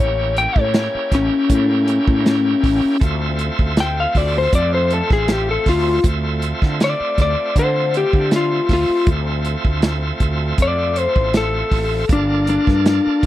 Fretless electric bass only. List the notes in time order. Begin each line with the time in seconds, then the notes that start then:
0.00 A1
0.56 A2
0.94 muted fretless electric bass stroke
1.12 A1
1.50 A2
2.08 A2
2.64 A1
3.02 D2
3.59 D2
4.15 D2
4.53 F2
5.11 A1
5.66 D2
6.05 D2
6.62 D3
7.00 muted fretless electric bass stroke
7.18 D2
7.56 D3
8.13 D3
8.70 D2
8.89 muted fretless electric bass stroke
9.07 D2
9.65 D2
10.21 D2
10.59 F2
11.16 A1
11.72 A1
12.09 G1
12.68 G2
13.06 muted fretless electric bass stroke